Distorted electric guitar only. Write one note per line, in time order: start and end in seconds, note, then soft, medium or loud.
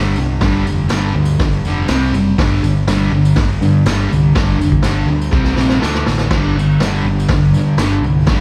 0.00 0.16 G2 medium
0.00 0.17 D3 medium
0.00 0.18 G3 loud
0.18 0.40 G2 medium
0.18 0.41 D3 medium
0.42 0.65 G2 medium
0.42 0.66 D3 medium
0.42 0.67 G3 loud
0.67 0.87 G2 medium
0.67 0.88 D3 medium
0.88 1.12 G2 medium
0.88 1.13 D3 medium
0.88 1.14 G3 medium
1.13 1.37 G2 medium
1.13 1.37 D3 medium
1.39 1.62 G2 medium
1.39 1.62 D3 medium
1.65 1.89 G2 medium
1.65 1.89 D3 medium
1.65 1.89 G3 loud
1.89 2.11 C3 loud
1.89 2.12 G3 medium
1.89 2.14 C4 loud
2.12 2.36 C3 medium
2.12 2.36 G3 medium
2.37 2.61 G2 loud
2.37 2.62 D3 loud
2.37 2.63 G3 loud
2.63 2.86 G2 medium
2.63 2.86 D3 medium
2.89 3.11 G2 medium
2.89 3.12 D3 loud
2.89 3.12 G3 loud
3.12 3.35 G2 medium
3.12 3.35 D3 medium
3.36 3.59 G2 medium
3.36 3.59 D3 medium
3.62 3.84 G2 medium
3.62 3.84 D3 medium
3.87 4.09 G2 medium
3.87 4.09 D3 medium
3.87 4.11 G3 loud
4.10 4.33 G2 medium
4.10 4.33 D3 medium
4.34 4.58 G2 medium
4.34 4.58 D3 medium
4.34 4.59 G3 medium
4.59 4.82 G2 medium
4.59 4.82 D3 medium
4.83 5.07 G2 medium
4.83 5.08 D3 loud
4.83 5.08 G3 loud
5.10 5.31 G2 medium
5.10 5.31 D3 medium
5.31 5.53 C3 medium
5.31 5.54 G3 medium
5.31 5.55 C4 medium
5.54 5.79 C3 medium
5.54 5.80 G3 medium
5.54 5.80 C4 medium
5.80 6.04 D3 medium
5.80 6.05 A3 medium
5.80 6.06 D4 medium
6.07 6.29 D3 medium
6.07 6.29 A3 medium
6.31 6.55 G2 loud
6.31 6.55 D3 loud
6.31 6.55 G3 loud
6.57 6.79 G2 medium
6.57 6.79 D3 medium
6.82 7.05 G2 medium
6.82 7.05 D3 loud
6.82 7.06 G3 loud
7.07 7.28 G2 medium
7.07 7.29 D3 medium
7.31 7.53 G2 medium
7.31 7.53 D3 medium
7.56 7.78 G2 medium
7.56 7.78 D3 medium
7.79 8.03 G2 medium
7.79 8.03 D3 medium
7.79 8.03 G3 loud
8.05 8.27 G2 medium
8.05 8.27 D3 medium
8.29 8.40 G2 medium
8.29 8.40 D3 loud
8.29 8.40 G3 loud